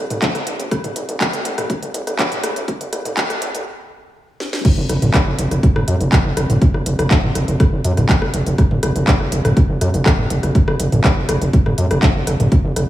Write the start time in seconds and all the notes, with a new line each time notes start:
0.10 F#1, closed hi-hat, mid tom
0.22 kick, clap, closed hi-hat
0.35 F#1, cross-stick, closed hi-hat
0.47 F#1, closed hi-hat
0.60 E1, closed hi-hat
0.71 kick, cross-stick, closed hi-hat
0.84 F#1, closed hi-hat, mid tom
0.96 F#1, closed hi-hat
1.09 F#1, closed hi-hat
1.21 kick, cross-stick, clap, closed hi-hat
1.33 F#1, closed hi-hat
1.45 F#1, closed hi-hat
1.58 F#1, cross-stick, closed hi-hat, mid tom
1.70 kick, closed hi-hat
1.82 F#1, closed hi-hat
1.94 F#1, closed hi-hat
2.07 F#1, cross-stick, closed hi-hat
2.19 kick, clap, closed hi-hat
2.32 F#1, closed hi-hat, mid tom
2.43 F#1, cross-stick, closed hi-hat
2.56 E1, closed hi-hat
2.68 kick, closed hi-hat
2.81 F#1, closed hi-hat
2.93 F#1, cross-stick, closed hi-hat
3.05 F#1, closed hi-hat, mid tom
3.17 kick, clap, closed hi-hat
3.30 F#1, cross-stick, closed hi-hat
3.42 F#1, closed hi-hat
3.55 F#1, closed hi-hat
4.40 snare
4.53 snare
4.65 kick, closed hi-hat, crash
4.78 F#1
4.89 F#1, cross-stick, closed hi-hat
5.02 F#1, closed hi-hat, mid tom
5.14 kick, cross-stick, clap, closed hi-hat
5.27 F#1
5.38 F#1, closed hi-hat
5.51 F#1, cross-stick, closed hi-hat
5.63 kick, closed hi-hat
5.76 F#1, cross-stick, mid tom
5.88 F#2, closed hi-hat
6.00 F#1, closed hi-hat
6.12 kick, cross-stick, clap, closed hi-hat
6.25 F#1
6.37 F#1, cross-stick, closed hi-hat
6.50 F#1, closed hi-hat, mid tom
6.62 kick, closed hi-hat
6.74 F#1, cross-stick
6.86 F#1, closed hi-hat
6.99 F#1, cross-stick, closed hi-hat
7.11 kick, clap, closed hi-hat
7.23 F#1, mid tom
7.35 F#1, cross-stick, closed hi-hat
7.48 F#1, closed hi-hat
7.60 kick, cross-stick, closed hi-hat
7.73 F#1
7.84 F#2, closed hi-hat
7.97 F#1, cross-stick, closed hi-hat, mid tom
8.09 kick, clap, closed hi-hat
8.22 F#1, cross-stick
8.34 F#1, closed hi-hat
8.46 F#1, closed hi-hat
8.58 kick, cross-stick, closed hi-hat
8.71 F#1, mid tom
8.83 F#1, cross-stick, closed hi-hat
8.96 F#1, closed hi-hat
9.07 kick, clap, closed hi-hat
9.20 F#1, cross-stick
9.32 F#1, closed hi-hat
9.45 F#1, cross-stick, closed hi-hat, mid tom
9.57 kick, closed hi-hat
9.69 F#1
9.81 F#2, cross-stick, closed hi-hat
9.94 F#1, closed hi-hat
10.06 kick, cross-stick, clap, closed hi-hat
10.19 F#1, mid tom
10.30 F#1, closed hi-hat
10.43 F#1, cross-stick, closed hi-hat
10.55 kick, closed hi-hat
10.68 F#1, cross-stick
10.80 F#1, closed hi-hat
10.92 F#1, closed hi-hat, mid tom
11.04 kick, cross-stick, clap, closed hi-hat
11.17 F#1
11.29 F#1, cross-stick, closed hi-hat
11.41 F#1, closed hi-hat
11.53 kick, closed hi-hat
11.66 F#1, cross-stick, mid tom
11.78 F#2, closed hi-hat
11.91 F#1, cross-stick, closed hi-hat
12.03 kick, clap, closed hi-hat
12.15 F#1
12.27 F#1, cross-stick, closed hi-hat
12.40 F#1, closed hi-hat, mid tom
12.52 kick, closed hi-hat
12.64 F#1
12.76 F#1, cross-stick, closed hi-hat